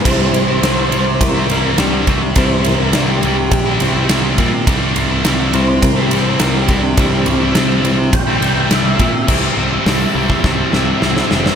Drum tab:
CC |x---------------|----------------|----------------|----------------|
RD |x-x-x-x-x-x-x-x-|x-x-x-x-x-x-x-x-|x-x-x-x-x-x-x-x-|x-x-x-x-x-x-x-x-|
HH |----------------|----------------|----------------|----------------|
SD |----o-------o---|----o-------o---|----o-------o---|----o-------o---|
BD |o-------o-----o-|o-------o-----o-|o-------o-----o-|o-------o-----o-|

CC |x---------------|
RD |----------------|
HH |----o-----------|
SD |----o---o-o-oooo|
BD |o------oo-------|